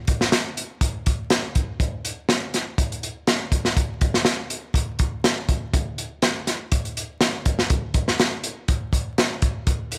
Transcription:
0.07 kick medium
0.07 closed hi-hat medium
0.21 snare medium
0.32 snare loud
0.32 closed hi-hat medium
0.57 closed hi-hat medium
0.81 kick medium
0.81 closed hi-hat medium
1.06 kick medium
1.06 closed hi-hat medium
1.30 snare loud
1.30 closed hi-hat medium
1.55 kick medium
1.55 closed hi-hat medium
1.80 kick loud
1.80 closed hi-hat medium
2.05 closed hi-hat medium
2.29 snare loud
2.29 closed hi-hat medium
2.54 snare soft
2.54 closed hi-hat medium
2.78 kick loud
2.78 closed hi-hat medium
2.92 closed hi-hat soft
3.03 closed hi-hat medium
3.27 snare loud
3.27 closed hi-hat medium
3.52 kick medium
3.52 closed hi-hat medium
3.65 snare medium
3.77 kick loud
3.77 closed hi-hat medium
4.01 kick loud
4.01 closed hi-hat medium
4.14 snare medium
4.25 snare loud
4.25 closed hi-hat medium
4.50 closed hi-hat medium
4.74 kick loud
4.74 closed hi-hat medium
4.99 kick medium
4.99 closed hi-hat medium
5.24 snare loud
5.24 closed hi-hat medium
5.49 kick medium
5.49 closed hi-hat medium
5.73 kick loud
5.73 closed hi-hat medium
5.98 closed hi-hat medium
6.22 snare loud
6.22 closed hi-hat medium
6.47 snare soft
6.47 closed hi-hat medium
6.72 kick loud
6.72 closed hi-hat medium
6.85 closed hi-hat soft
6.97 closed hi-hat medium
7.21 snare loud
7.21 closed hi-hat medium
7.45 kick medium
7.45 closed hi-hat medium
7.59 snare medium
7.70 kick loud
7.70 closed hi-hat medium
7.94 kick medium
7.94 closed hi-hat medium
8.08 snare medium
8.19 snare loud
8.19 closed hi-hat medium
8.44 closed hi-hat medium
8.68 kick loud
8.68 closed hi-hat medium
8.93 kick medium
8.93 closed hi-hat medium
9.18 snare loud
9.18 closed hi-hat medium
9.42 kick loud
9.42 closed hi-hat medium
9.67 kick loud
9.67 closed hi-hat medium
9.92 closed hi-hat medium

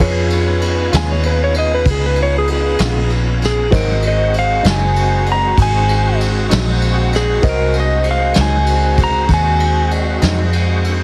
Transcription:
0.00 0.91 F2 medium
0.00 3.68 B3 medium
0.00 3.68 C#4 medium
0.00 3.56 D#4 medium
0.00 3.56 F4 medium
0.00 3.68 F4 medium
0.00 3.68 G#4 medium
0.00 3.56 B4 medium
0.00 3.68 B4 medium
0.00 3.68 C#5 medium
0.00 kick loud
0.30 ride medium
0.61 ride medium
0.92 1.84 D#2 medium
0.92 1.13 C#3 medium
0.92 1.12 G#3 medium
0.92 1.12 B3 medium
0.92 1.12 F4 medium
0.92 snare loud
0.92 ride medium
0.97 1.10 G#5 medium
1.12 1.26 C#5 medium
1.23 1.41 B4 medium
1.23 ride medium
1.44 1.57 C#5 medium
1.54 ride medium
1.58 1.72 D#5 medium
1.74 1.88 B4 medium
1.86 2.76 C#2 medium
1.86 kick loud
1.86 ride medium
1.91 2.04 G#4 medium
2.06 2.19 B4 medium
2.16 ride medium
2.23 2.35 C#5 medium
2.38 2.51 G#4 medium
2.48 ride medium
2.52 3.11 G#4 medium
2.79 3.70 A#1 loud
2.79 2.99 C#3 medium
2.79 2.99 G#3 medium
2.79 2.99 B3 medium
2.79 2.98 F4 medium
2.79 snare loud
2.79 ride medium
3.10 ride soft
3.42 3.74 G#4 medium
3.42 snare soft
3.42 ride medium
3.71 4.62 G#1 medium
3.71 3.90 G#2 medium
3.71 3.91 F#3 medium
3.71 10.96 G#3 medium
3.71 3.91 C4 medium
3.71 10.96 C4 medium
3.71 7.41 C4 medium
3.71 3.92 D#4 medium
3.71 7.39 F#4 soft
3.71 10.96 F#4 medium
3.71 7.40 F#4 medium
3.71 7.39 A#4 soft
3.71 7.39 C5 soft
3.71 7.40 D#5 medium
3.71 kick loud
3.71 ride medium
3.75 7.41 G#3 medium
3.75 4.04 A#4 medium
4.02 ride medium
4.07 4.36 D#5 medium
4.34 ride medium
4.39 4.67 F5 medium
4.63 5.55 F#1 medium
4.63 4.84 G#2 medium
4.63 4.84 F#3 medium
4.63 4.83 C4 medium
4.63 4.83 D#4 medium
4.63 snare loud
4.63 ride medium
4.70 5.28 G#5 medium
4.96 ride medium
5.26 ride medium
5.32 5.60 A#5 medium
5.58 6.48 G#1 medium
5.58 kick loud
5.58 ride medium
5.62 6.20 G#5 medium
5.89 ride medium
6.21 ride medium
6.50 7.42 A#1 loud
6.50 6.70 G#2 medium
6.50 6.69 F#3 medium
6.50 6.69 C4 medium
6.50 6.69 D#4 medium
6.50 snare loud
6.50 ride medium
6.82 ride medium
7.13 7.45 G#4 medium
7.13 snare soft
7.13 ride medium
7.42 8.34 C2 medium
7.42 11.04 G#3 medium
7.42 11.04 C4 medium
7.42 11.04 F#4 soft
7.42 11.04 F#4 medium
7.42 11.04 A#4 medium
7.42 11.04 C5 soft
7.42 11.04 D#5 medium
7.42 kick loud
7.42 ride medium
7.49 7.77 A#4 medium
7.73 ride medium
7.80 8.07 D#5 medium
8.04 ride medium
8.11 8.38 F5 medium
8.34 9.27 C#2 medium
8.34 8.56 G#2 medium
8.34 8.56 F#3 medium
8.34 8.55 C4 medium
8.34 8.55 D#4 medium
8.34 snare loud
8.34 ride medium
8.41 8.99 G#5 medium
8.66 ride medium
8.97 kick medium
8.97 ride medium
9.04 9.31 A#5 medium
9.28 10.19 D#2 medium
9.28 kick loud
9.28 ride medium
9.34 9.92 G#5 medium
9.60 ride medium
9.91 ride medium
10.22 11.04 F2 loud
10.22 10.42 G#2 medium
10.22 10.42 F#3 medium
10.22 10.41 C4 medium
10.22 10.41 D#4 medium
10.22 snare loud
10.22 ride medium
10.53 ride medium
10.84 ride medium

